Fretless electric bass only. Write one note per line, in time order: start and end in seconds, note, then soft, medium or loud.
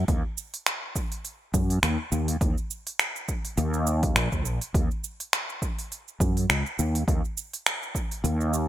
0.08 0.21 D#2 loud
1.54 1.77 F#2 medium
1.83 1.96 D#2 loud
2.12 2.36 D#2 medium
2.41 2.54 D#2 loud
3.57 4.15 D#2 loud
4.16 4.29 A#1 loud
4.32 4.45 D#2 medium
4.45 4.58 A#1 medium
4.74 4.87 D#2 loud
6.20 6.44 F#2 medium
6.49 6.62 C#2 loud
6.79 7.02 D#2 medium
7.08 7.20 D#2 loud
8.24 8.68 D#2 loud